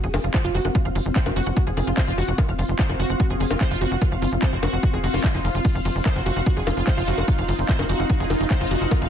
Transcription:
Already playing: C4 F4 F5 C6
0.04 F1 G#4, closed hi-hat
0.14 F1 G#4, open hi-hat, high bongo
0.24 F1 F4, closed hi-hat
0.34 C5, kick, clap, closed hi-hat
0.44 F1 F4, closed hi-hat
0.55 F1 F#4, open hi-hat
0.65 F1 F#5, closed hi-hat, high bongo
0.75 F4, kick, closed hi-hat
0.85 F1 F5, closed hi-hat
0.95 F#1 F4, open hi-hat
1.06 F1, closed hi-hat
1.16 C5, kick, clap, closed hi-hat
1.26 F1 F#4, closed hi-hat, high bongo
1.36 F1 F#4, open hi-hat
1.46 F1 F#5, closed hi-hat
1.57 F#4, kick, closed hi-hat
1.67 F1 G#4, closed hi-hat
1.77 F1 G#4, open hi-hat, high bongo
1.87 F1 F4, closed hi-hat
1.97 C5, kick, clap, closed hi-hat
2.08 F1 F4, closed hi-hat
2.18 F1 F#4, open hi-hat
2.28 F1 F#5, closed hi-hat
2.38 F4, kick, closed hi-hat, high bongo
2.48 F1 F5, closed hi-hat
2.59 F1 F4, open hi-hat
2.69 F1, closed hi-hat
2.79 C5, kick, clap, closed hi-hat
2.89 F1 F#4, closed hi-hat, high bongo
2.99 F1 F#4, open hi-hat
3.10 F1 F#5, closed hi-hat
3.20 F#4, kick, closed hi-hat
3.30 F1 G#4, closed hi-hat
3.40 F1 G#4, open hi-hat
3.51 F1 F4, closed hi-hat, high bongo
3.61 C5, kick, clap, closed hi-hat
3.71 F1 F4, closed hi-hat
3.81 F1 F#4, open hi-hat
3.91 F1 F#5, closed hi-hat
4.02 F4, kick, closed hi-hat, high bongo
4.12 F1 F5, closed hi-hat
4.22 F#1 F4, open hi-hat
4.32 F1
4.42 C5, kick, clap, closed hi-hat
4.53 F1 F#4, closed hi-hat
4.63 F1 F#4, open hi-hat, high bongo
4.73 F1 F#5, closed hi-hat
4.83 F#4, kick, closed hi-hat
4.93 F1 G#4, closed hi-hat
5.04 F1 F#4, open hi-hat
5.14 F1 F4, closed hi-hat, high bongo
5.24 kick, clap, closed hi-hat
5.34 F1 D#4, closed hi-hat
5.44 F1 F4, open hi-hat
5.55 F1 F4, closed hi-hat
5.65 D#4 F4, kick, closed hi-hat, ride
5.75 F1 F5, closed hi-hat
5.85 F1 F4, open hi-hat, ride
5.95 F1, closed hi-hat
6.06 C5, kick, clap, closed hi-hat, ride, high bongo
6.16 F1 F#4, closed hi-hat
6.26 F1 F#4, open hi-hat, ride
6.36 F1 F#5, closed hi-hat
6.46 F#4, kick, closed hi-hat, ride
6.57 F1 G#4, closed hi-hat
6.67 F1 F4, open hi-hat, ride, high bongo
6.77 F1 F4, closed hi-hat
6.87 C5, kick, clap, closed hi-hat, ride
6.97 F1 F4, closed hi-hat
7.08 F1 F#4, open hi-hat, ride
7.18 F1 F#5, high bongo
7.28 F4, kick, closed hi-hat, ride
7.38 F1 F5, closed hi-hat
7.48 F#1 F4, open hi-hat, ride
7.59 F1, closed hi-hat
7.69 C5, kick, clap, closed hi-hat, ride
7.79 F1 F#4, closed hi-hat, high bongo
7.89 F1 F#4, open hi-hat, ride
7.99 F1 F#5, closed hi-hat
8.10 F#4, kick, closed hi-hat, ride
8.20 F1 G#4, closed hi-hat
8.30 F1 F4, open hi-hat, ride, high bongo
8.40 F1 F4, closed hi-hat
8.51 C5, kick, clap, closed hi-hat, ride
8.61 F1 F4, closed hi-hat
8.71 F1 F#4, open hi-hat, ride
8.81 F1 F#5, closed hi-hat
8.91 F4, kick, closed hi-hat, ride, high bongo
9.02 F1 F5, closed hi-hat

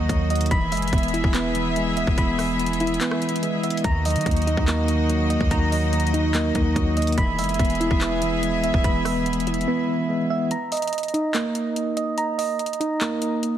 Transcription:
Already playing: D#3 F#3 A#3 D#4 F#4 D#5
0.09 D#2 F#3, kick, closed hi-hat
0.30 A#3 D#5, closed hi-hat
0.35 closed hi-hat
0.41 closed hi-hat
0.46 closed hi-hat
0.51 E1 E3 B3 E4 G#4 E5 B5, kick, closed hi-hat
0.72 F#1 G#3 E5, closed hi-hat, open hi-hat
0.77 closed hi-hat
0.82 closed hi-hat
0.88 closed hi-hat
0.93 E1 B3, kick, closed hi-hat
0.98 closed hi-hat
1.03 closed hi-hat
1.08 closed hi-hat
1.14 E4, closed hi-hat
1.24 E1, kick
1.34 B3 E5, clap, closed hi-hat
1.55 E3, closed hi-hat
1.76 G#3, closed hi-hat
1.97 B3 E5, closed hi-hat
2.07 E1, kick
2.18 E1 E3 B5, kick, closed hi-hat
2.38 G#3 E5, cross-stick, open hi-hat
2.59 B3, closed hi-hat
2.66 closed hi-hat
2.73 closed hi-hat
2.80 E4, closed hi-hat
2.87 closed hi-hat
2.94 closed hi-hat
3.01 B3 E5, clap, closed hi-hat
3.11 cross-stick
3.22 E3, closed hi-hat
3.29 closed hi-hat
3.36 closed hi-hat
3.42 G#3, closed hi-hat
3.64 B3 E5, closed hi-hat
3.70 closed hi-hat
3.77 closed hi-hat
3.84 D#2 D#3 A#3 D#4 F#4 D#5 A#5, kick, closed hi-hat
4.05 F#3 D#5, closed hi-hat, open hi-hat
4.10 closed hi-hat
4.16 D#3, closed hi-hat
4.21 closed hi-hat
4.25 D#2 A#3, kick, closed hi-hat
4.31 closed hi-hat
4.36 closed hi-hat
4.42 closed hi-hat
4.47 D#4, closed hi-hat
4.57 D#2, kick
4.67 A#3 D#5, clap, closed hi-hat
4.88 D#3, closed hi-hat
5.10 F#3, closed hi-hat
5.30 A#3 D#5, closed hi-hat
5.41 D#2, kick
5.51 D#2 D#3 A#5, kick, closed hi-hat
5.72 F#3 D#5, open hi-hat
5.93 A#3, closed hi-hat
6.00 closed hi-hat
6.07 closed hi-hat
6.14 D#4, closed hi-hat
6.34 A#3 D#5, clap, closed hi-hat
6.55 D#2 D#3, kick, closed hi-hat
6.76 D#2 F#3, kick, closed hi-hat
6.97 A#3 D#5, closed hi-hat
7.02 closed hi-hat
7.07 closed hi-hat
7.13 closed hi-hat
7.18 E1 E3 B3 E4 G#4 E5 B5, kick, closed hi-hat
7.38 F#1 G#3 E5, closed hi-hat, open hi-hat
7.44 closed hi-hat
7.49 closed hi-hat
7.54 closed hi-hat
7.59 E1 B3, kick, closed hi-hat
7.65 closed hi-hat
7.70 closed hi-hat
7.75 closed hi-hat
7.80 E4, closed hi-hat
7.91 E1, kick
8.00 B3 E5, clap, closed hi-hat
8.22 E3, closed hi-hat
8.43 G#3, closed hi-hat
8.64 B3 E5, closed hi-hat
8.74 E1, kick
8.84 E1 E3 B5, kick, closed hi-hat
9.05 G#3 E5, cross-stick, open hi-hat
9.26 B3, closed hi-hat
9.33 closed hi-hat
9.40 closed hi-hat
9.47 E4, closed hi-hat
9.54 closed hi-hat
9.61 closed hi-hat
9.68 B3 E5
9.89 E3
10.09 G#3
10.30 B3 E5
10.51 A#5, closed hi-hat
10.72 D#5, closed hi-hat, open hi-hat
10.77 closed hi-hat
10.82 closed hi-hat
10.88 closed hi-hat
10.93 closed hi-hat
10.98 closed hi-hat
11.03 closed hi-hat
11.08 closed hi-hat
11.14 D#4, closed hi-hat
11.34 A#3, clap, closed hi-hat
11.55 closed hi-hat
11.76 closed hi-hat
11.97 D#5, closed hi-hat
12.18 A#5, closed hi-hat
12.38 D#5, open hi-hat
12.59 closed hi-hat
12.66 closed hi-hat
12.73 closed hi-hat
12.80 D#4, closed hi-hat
13.01 A#3, clap, closed hi-hat
13.22 closed hi-hat
13.43 closed hi-hat

